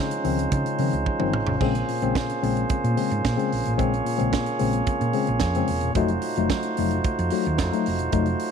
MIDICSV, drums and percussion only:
0, 0, Header, 1, 2, 480
1, 0, Start_track
1, 0, Key_signature, -5, "minor"
1, 0, Tempo, 543478
1, 1420, Time_signature, 4, 2, 24, 8
1, 7518, End_track
2, 0, Start_track
2, 0, Title_t, "Drums"
2, 96, Note_on_c, 9, 42, 49
2, 184, Note_off_c, 9, 42, 0
2, 215, Note_on_c, 9, 46, 64
2, 304, Note_off_c, 9, 46, 0
2, 342, Note_on_c, 9, 42, 47
2, 430, Note_off_c, 9, 42, 0
2, 455, Note_on_c, 9, 42, 63
2, 459, Note_on_c, 9, 36, 121
2, 543, Note_off_c, 9, 42, 0
2, 547, Note_off_c, 9, 36, 0
2, 581, Note_on_c, 9, 42, 43
2, 669, Note_off_c, 9, 42, 0
2, 692, Note_on_c, 9, 46, 77
2, 780, Note_off_c, 9, 46, 0
2, 820, Note_on_c, 9, 42, 35
2, 908, Note_off_c, 9, 42, 0
2, 939, Note_on_c, 9, 36, 92
2, 939, Note_on_c, 9, 48, 45
2, 1027, Note_off_c, 9, 48, 0
2, 1028, Note_off_c, 9, 36, 0
2, 1057, Note_on_c, 9, 47, 61
2, 1145, Note_off_c, 9, 47, 0
2, 1179, Note_on_c, 9, 45, 86
2, 1267, Note_off_c, 9, 45, 0
2, 1294, Note_on_c, 9, 43, 86
2, 1383, Note_off_c, 9, 43, 0
2, 1420, Note_on_c, 9, 36, 97
2, 1421, Note_on_c, 9, 55, 69
2, 1509, Note_off_c, 9, 36, 0
2, 1509, Note_off_c, 9, 55, 0
2, 1544, Note_on_c, 9, 42, 38
2, 1632, Note_off_c, 9, 42, 0
2, 1664, Note_on_c, 9, 46, 60
2, 1753, Note_off_c, 9, 46, 0
2, 1783, Note_on_c, 9, 42, 41
2, 1871, Note_off_c, 9, 42, 0
2, 1902, Note_on_c, 9, 36, 103
2, 1907, Note_on_c, 9, 42, 49
2, 1912, Note_on_c, 9, 38, 105
2, 1990, Note_off_c, 9, 36, 0
2, 1996, Note_off_c, 9, 42, 0
2, 2000, Note_off_c, 9, 38, 0
2, 2027, Note_on_c, 9, 42, 45
2, 2115, Note_off_c, 9, 42, 0
2, 2149, Note_on_c, 9, 46, 60
2, 2237, Note_off_c, 9, 46, 0
2, 2267, Note_on_c, 9, 42, 46
2, 2355, Note_off_c, 9, 42, 0
2, 2379, Note_on_c, 9, 42, 60
2, 2385, Note_on_c, 9, 36, 121
2, 2467, Note_off_c, 9, 42, 0
2, 2473, Note_off_c, 9, 36, 0
2, 2511, Note_on_c, 9, 42, 41
2, 2599, Note_off_c, 9, 42, 0
2, 2625, Note_on_c, 9, 46, 81
2, 2713, Note_off_c, 9, 46, 0
2, 2750, Note_on_c, 9, 42, 37
2, 2838, Note_off_c, 9, 42, 0
2, 2867, Note_on_c, 9, 36, 97
2, 2870, Note_on_c, 9, 38, 100
2, 2871, Note_on_c, 9, 42, 60
2, 2956, Note_off_c, 9, 36, 0
2, 2959, Note_off_c, 9, 38, 0
2, 2959, Note_off_c, 9, 42, 0
2, 2996, Note_on_c, 9, 42, 41
2, 3084, Note_off_c, 9, 42, 0
2, 3111, Note_on_c, 9, 46, 78
2, 3199, Note_off_c, 9, 46, 0
2, 3227, Note_on_c, 9, 42, 45
2, 3316, Note_off_c, 9, 42, 0
2, 3348, Note_on_c, 9, 36, 101
2, 3349, Note_on_c, 9, 42, 60
2, 3436, Note_off_c, 9, 36, 0
2, 3437, Note_off_c, 9, 42, 0
2, 3475, Note_on_c, 9, 42, 36
2, 3563, Note_off_c, 9, 42, 0
2, 3587, Note_on_c, 9, 46, 60
2, 3675, Note_off_c, 9, 46, 0
2, 3705, Note_on_c, 9, 42, 37
2, 3793, Note_off_c, 9, 42, 0
2, 3823, Note_on_c, 9, 36, 99
2, 3824, Note_on_c, 9, 42, 50
2, 3829, Note_on_c, 9, 38, 102
2, 3911, Note_off_c, 9, 36, 0
2, 3913, Note_off_c, 9, 42, 0
2, 3917, Note_off_c, 9, 38, 0
2, 3939, Note_on_c, 9, 42, 45
2, 4027, Note_off_c, 9, 42, 0
2, 4055, Note_on_c, 9, 46, 60
2, 4143, Note_off_c, 9, 46, 0
2, 4176, Note_on_c, 9, 42, 49
2, 4264, Note_off_c, 9, 42, 0
2, 4296, Note_on_c, 9, 42, 57
2, 4302, Note_on_c, 9, 36, 107
2, 4384, Note_off_c, 9, 42, 0
2, 4390, Note_off_c, 9, 36, 0
2, 4423, Note_on_c, 9, 42, 43
2, 4511, Note_off_c, 9, 42, 0
2, 4532, Note_on_c, 9, 46, 73
2, 4620, Note_off_c, 9, 46, 0
2, 4653, Note_on_c, 9, 42, 35
2, 4741, Note_off_c, 9, 42, 0
2, 4766, Note_on_c, 9, 38, 100
2, 4766, Note_on_c, 9, 42, 63
2, 4779, Note_on_c, 9, 36, 99
2, 4854, Note_off_c, 9, 38, 0
2, 4855, Note_off_c, 9, 42, 0
2, 4867, Note_off_c, 9, 36, 0
2, 4898, Note_on_c, 9, 42, 44
2, 4987, Note_off_c, 9, 42, 0
2, 5012, Note_on_c, 9, 46, 68
2, 5100, Note_off_c, 9, 46, 0
2, 5131, Note_on_c, 9, 42, 42
2, 5219, Note_off_c, 9, 42, 0
2, 5253, Note_on_c, 9, 42, 58
2, 5257, Note_on_c, 9, 36, 110
2, 5341, Note_off_c, 9, 42, 0
2, 5346, Note_off_c, 9, 36, 0
2, 5372, Note_on_c, 9, 42, 36
2, 5460, Note_off_c, 9, 42, 0
2, 5490, Note_on_c, 9, 46, 67
2, 5578, Note_off_c, 9, 46, 0
2, 5614, Note_on_c, 9, 42, 42
2, 5702, Note_off_c, 9, 42, 0
2, 5738, Note_on_c, 9, 36, 94
2, 5738, Note_on_c, 9, 42, 53
2, 5742, Note_on_c, 9, 38, 98
2, 5826, Note_off_c, 9, 36, 0
2, 5826, Note_off_c, 9, 42, 0
2, 5830, Note_off_c, 9, 38, 0
2, 5852, Note_on_c, 9, 42, 46
2, 5940, Note_off_c, 9, 42, 0
2, 5977, Note_on_c, 9, 46, 63
2, 6066, Note_off_c, 9, 46, 0
2, 6101, Note_on_c, 9, 42, 44
2, 6189, Note_off_c, 9, 42, 0
2, 6218, Note_on_c, 9, 42, 59
2, 6222, Note_on_c, 9, 36, 118
2, 6306, Note_off_c, 9, 42, 0
2, 6310, Note_off_c, 9, 36, 0
2, 6346, Note_on_c, 9, 42, 43
2, 6434, Note_off_c, 9, 42, 0
2, 6449, Note_on_c, 9, 46, 82
2, 6537, Note_off_c, 9, 46, 0
2, 6578, Note_on_c, 9, 42, 33
2, 6667, Note_off_c, 9, 42, 0
2, 6698, Note_on_c, 9, 38, 93
2, 6698, Note_on_c, 9, 42, 59
2, 6702, Note_on_c, 9, 36, 99
2, 6786, Note_off_c, 9, 38, 0
2, 6786, Note_off_c, 9, 42, 0
2, 6790, Note_off_c, 9, 36, 0
2, 6828, Note_on_c, 9, 42, 43
2, 6917, Note_off_c, 9, 42, 0
2, 6940, Note_on_c, 9, 46, 71
2, 7028, Note_off_c, 9, 46, 0
2, 7054, Note_on_c, 9, 42, 44
2, 7142, Note_off_c, 9, 42, 0
2, 7173, Note_on_c, 9, 42, 65
2, 7179, Note_on_c, 9, 36, 100
2, 7261, Note_off_c, 9, 42, 0
2, 7268, Note_off_c, 9, 36, 0
2, 7292, Note_on_c, 9, 42, 35
2, 7380, Note_off_c, 9, 42, 0
2, 7414, Note_on_c, 9, 46, 65
2, 7502, Note_off_c, 9, 46, 0
2, 7518, End_track
0, 0, End_of_file